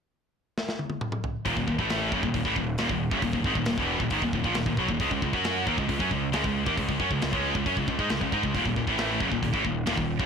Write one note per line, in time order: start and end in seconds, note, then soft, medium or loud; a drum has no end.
0.58 snare medium
0.69 snare medium
0.79 high tom medium
0.90 high tom medium
1.01 mid tom medium
1.12 mid tom medium
1.24 floor tom medium
1.45 1.56 D#1 medium
1.45 1.56 D#2 medium
1.45 1.56 A#2 loud
1.45 kick medium
1.45 open hi-hat medium
1.57 1.67 D#1 medium
1.57 1.66 D#2 medium
1.57 1.66 A#2 medium
1.57 kick medium
1.67 1.78 D#1 medium
1.67 1.78 D#2 medium
1.67 1.78 A#2 medium
1.67 kick medium
1.79 2.10 A1 medium
1.79 2.11 A2 medium
1.79 2.11 E3 loud
1.79 2.12 A3 loud
1.79 kick medium
1.90 snare loud
1.90 open hi-hat medium
2.12 2.22 F#1 medium
2.12 2.22 F#2 medium
2.12 2.23 C#3 medium
2.12 kick medium
2.23 2.33 D#1 medium
2.23 2.33 D#2 medium
2.23 2.33 A#2 medium
2.23 kick medium
2.34 2.44 D#1 medium
2.34 2.45 D#2 medium
2.34 2.44 A#2 medium
2.34 kick medium
2.34 open hi-hat medium
2.45 2.55 A1 medium
2.45 2.55 A2 medium
2.45 2.56 E3 loud
2.45 kick medium
2.56 2.77 D#1 medium
2.56 2.74 D#2 medium
2.56 2.74 A#2 medium
2.56 kick medium
2.78 2.89 D#1 medium
2.78 2.89 D#2 medium
2.78 2.89 A#2 loud
2.78 snare loud
2.78 open hi-hat medium
2.89 3.10 D#1 medium
2.89 3.07 D#2 medium
2.89 3.08 A#2 medium
2.89 kick medium
3.11 3.21 F#1 loud
3.11 3.22 F#2 medium
3.11 3.22 C#3 medium
3.11 kick loud
3.22 3.33 D#1 medium
3.22 3.33 D#2 medium
3.22 3.33 A#2 medium
3.22 kick medium
3.22 open hi-hat medium
3.33 3.44 D#1 medium
3.33 3.45 D#2 medium
3.33 3.45 A#2 medium
3.33 kick medium
3.44 3.55 G#1 loud
3.44 3.55 G#2 medium
3.44 3.56 D#3 loud
3.44 kick medium
3.55 3.66 D#1 medium
3.55 3.66 D#2 medium
3.55 3.67 A#2 medium
3.55 kick medium
3.66 3.77 D#1 medium
3.66 3.78 D#2 medium
3.66 3.78 A#2 medium
3.66 snare loud
3.66 open hi-hat medium
3.78 3.98 E1 medium
3.78 4.00 E2 medium
3.78 4.00 B2 medium
3.78 4.00 E3 medium
3.78 kick loud
4.00 4.10 D#1 medium
4.00 4.11 D#2 medium
4.00 4.10 A#2 medium
4.00 kick loud
4.10 4.21 G#1 medium
4.10 4.21 G#2 medium
4.10 4.22 D#3 loud
4.10 kick medium
4.10 open hi-hat medium
4.21 4.33 D#1 medium
4.21 4.33 D#2 medium
4.21 4.33 A#2 medium
4.21 kick medium
4.33 4.44 D#1 medium
4.33 4.45 D#2 medium
4.33 4.43 A#2 medium
4.33 kick medium
4.44 4.55 A#1 medium
4.44 4.55 A#2 medium
4.44 4.55 F3 loud
4.44 kick medium
4.55 4.65 D#1 medium
4.55 4.66 D#2 medium
4.55 4.66 A#2 medium
4.55 snare loud
4.55 open hi-hat medium
4.66 4.77 D#1 medium
4.66 4.78 D#2 medium
4.66 4.78 A#2 medium
4.66 kick medium
4.77 4.88 B1 medium
4.77 4.88 B2 medium
4.77 4.89 F#3 loud
4.77 kick medium
4.88 4.99 D#1 medium
4.88 5.00 D#2 medium
4.88 5.00 A#2 medium
4.88 kick medium
5.00 5.10 C#2 medium
5.00 5.10 C#3 medium
5.00 5.10 G#3 loud
5.00 kick loud
5.00 open hi-hat medium
5.11 5.21 C#2 medium
5.11 5.22 C#3 medium
5.11 5.22 G#3 medium
5.11 kick medium
5.22 5.32 C#2 medium
5.22 5.33 C#3 medium
5.22 5.33 G#3 medium
5.22 kick medium
5.33 5.64 F#2 medium
5.33 5.66 F#3 medium
5.33 5.66 C#4 medium
5.33 5.66 F#4 loud
5.33 kick medium
5.44 snare loud
5.44 open hi-hat medium
5.66 5.77 D#2 medium
5.66 5.76 D#3 medium
5.66 5.77 A#3 medium
5.66 kick medium
5.78 5.88 C#2 medium
5.78 5.87 C#3 medium
5.78 5.87 G#3 medium
5.78 kick medium
5.88 5.99 C#2 medium
5.88 6.00 C#3 medium
5.88 5.99 G#3 medium
5.88 kick medium
5.88 open hi-hat medium
5.99 6.10 F#2 medium
5.99 6.10 F#3 medium
5.99 6.10 C#4 loud
5.99 kick medium
6.11 6.31 C#2 medium
6.11 6.28 C#3 medium
6.11 6.29 G#3 medium
6.11 kick medium
6.32 6.43 C#2 loud
6.32 6.43 C#3 medium
6.32 6.43 G#3 medium
6.32 snare loud
6.32 open hi-hat medium
6.44 6.65 C#2 medium
6.44 6.62 C#3 medium
6.44 6.62 G#3 medium
6.44 kick medium
6.66 6.77 D#2 loud
6.66 6.76 D#3 medium
6.66 6.77 A#3 loud
6.66 kick loud
6.77 6.88 C#2 medium
6.77 6.88 C#3 medium
6.77 6.88 G#3 medium
6.77 kick medium
6.77 open hi-hat medium
6.89 6.99 C#2 medium
6.89 7.00 C#3 medium
6.89 6.99 G#3 medium
6.89 kick medium
7.00 7.10 F#2 loud
7.00 7.10 F#3 medium
7.00 7.10 C#4 medium
7.00 kick medium
7.10 7.21 C#2 medium
7.10 7.21 C#3 medium
7.10 7.21 G#3 medium
7.10 kick medium
7.22 7.33 C#2 medium
7.22 7.31 C#3 medium
7.22 7.31 G#3 medium
7.22 snare loud
7.22 open hi-hat medium
7.32 7.53 C#2 medium
7.32 7.54 C#3 medium
7.32 7.54 G#3 medium
7.32 7.54 C#4 medium
7.32 kick loud
7.55 7.65 C#2 medium
7.55 7.66 C#3 medium
7.55 7.66 G#3 medium
7.55 kick loud
7.66 7.76 F#2 medium
7.66 7.76 F#3 medium
7.66 7.76 C#4 loud
7.66 kick medium
7.66 open hi-hat soft
7.77 7.87 C#2 medium
7.77 7.86 C#3 medium
7.77 7.87 G#3 medium
7.77 kick medium
7.87 7.98 C#2 medium
7.87 7.99 C#3 soft
7.87 7.98 G#3 medium
7.87 kick medium
7.99 8.09 G#2 medium
7.99 8.09 G#3 medium
7.99 8.10 D#4 loud
7.99 kick medium
8.10 8.21 C#2 medium
8.10 8.20 C#3 medium
8.10 8.21 G#3 medium
8.10 snare loud
8.10 open hi-hat medium
8.21 8.32 C#2 medium
8.21 8.32 C#3 medium
8.21 8.32 G#3 medium
8.21 kick medium
8.32 8.42 G#2 medium
8.32 8.43 G#3 medium
8.32 8.43 D#4 medium
8.32 kick medium
8.43 8.53 C#2 medium
8.43 8.55 C#3 medium
8.43 8.55 G#3 medium
8.43 kick medium
8.55 8.65 D#1 medium
8.55 8.66 D#2 medium
8.55 8.66 A#2 loud
8.55 kick medium
8.55 open hi-hat medium
8.65 8.76 D#1 medium
8.65 8.76 D#2 medium
8.65 8.76 A#2 medium
8.65 kick medium
8.76 8.87 D#1 medium
8.76 8.88 D#2 medium
8.76 8.87 A#2 medium
8.76 kick medium
8.87 9.18 A1 medium
8.87 9.20 A2 medium
8.87 9.20 E3 medium
8.87 9.20 A3 loud
8.87 kick medium
8.98 snare loud
8.98 open hi-hat medium
9.20 9.31 F#1 medium
9.20 9.31 F#2 medium
9.20 9.31 C#3 loud
9.20 kick loud
9.31 9.42 D#1 medium
9.31 9.41 D#2 medium
9.31 9.41 A#2 medium
9.31 kick medium
9.42 9.53 D#1 medium
9.42 9.53 D#2 medium
9.42 9.53 A#2 medium
9.42 kick medium
9.42 open hi-hat medium
9.54 9.64 A1 medium
9.54 9.64 A2 medium
9.54 9.64 E3 loud
9.54 kick medium
9.64 9.85 D#1 medium
9.64 9.82 D#2 medium
9.64 9.82 A#2 medium
9.64 kick medium
9.86 9.97 D#1 medium
9.86 9.96 D#2 medium
9.86 9.96 A#2 medium
9.86 snare loud
9.86 open hi-hat medium
9.97 10.18 D#1 medium
9.97 10.15 D#2 medium
9.97 10.15 A#2 medium
9.97 kick medium
10.19 10.26 F#1 medium
10.19 10.26 F#2 medium
10.19 10.26 C#3 medium
10.19 kick medium